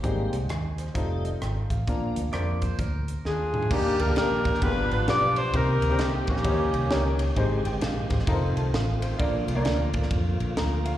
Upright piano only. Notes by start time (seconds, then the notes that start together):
0.03 G#2 C4 D#4 G4 G#4
0.50 G#5
0.78 C5
0.94 C4 D#4 F4 A4
1.24 D#5
1.42 G5
1.70 F5
1.88 A#2 A#3 D4 F4 A#4
2.33 A#3 D4 F4 C5
3.71 D#3 A#3 D4 D#4 G4 A#4
4.08 A#3 D4 G4 A4
4.14 A#4
4.62 G2 B3 D4 F4 G4 G#4
4.69 B4
5.07 B3 D4 F4 G4 B4
5.53 C3 C4 D#4 G4 A#4 C5
5.90 C4 D4 G4 A#4 C5
5.96 D#4
6.45 D#3 C#4 D#4 G4 A#4 C5
6.51 C#5
6.91 C#4 D#4 G4 A#4 C#5
7.36 G#2 C4 D#4 G4 G#4 C5
7.66 G5
7.83 F5
8.11 C5
8.27 C4 D#4 F4 A4 A#4
8.34 C5
8.58 A5
8.74 F5
9.02 C5
9.19 A#2 A#3 D4 F4 A#4 D5
9.55 A#3 D4 F4 A#4 C#5
9.62 D5
10.57 A#5
10.86 F5